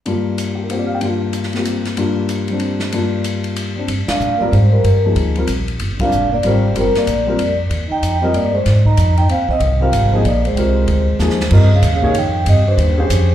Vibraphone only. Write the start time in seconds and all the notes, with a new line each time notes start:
4.09 F5
4.41 D5
4.52 C5
4.72 A#4
6.01 F5
6.34 D5
6.48 C5
6.80 A#4
6.98 D5
7.92 G5
8.23 D#5
8.36 D5
8.55 C5
8.86 A#5
9.18 G5
9.31 F5
9.51 D#5
9.82 F5
10.15 D#5
10.26 D5
10.47 C5
11.54 D#5
11.75 F5
11.95 F5
12.18 G5
12.49 D#5
12.68 C5